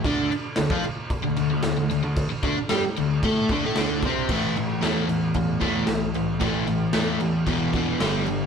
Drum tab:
CC |x-x-x-x-x-x-x-x-|x-x-x-x-x-x-x-x-|x-x-x-x-x-x-x-x-|x-x-x-x-x-x-x-x-|
SD |----o-------o---|----o-------o---|----o-------o---|----o-------o---|
BD |o----o--o-------|o-o-----o-o---o-|o-------o-o-----|o-------o-o-----|